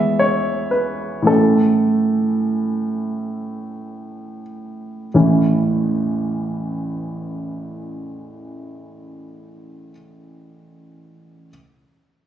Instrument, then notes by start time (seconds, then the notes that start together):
grand piano
Already playing: E2 E3 G#3 B3 E5
0.19 C#5
0.71 B4
1.22 A2 E3 A3
1.27 C#4 A4
5.14 A1 E2 E3 A3 C#4 E4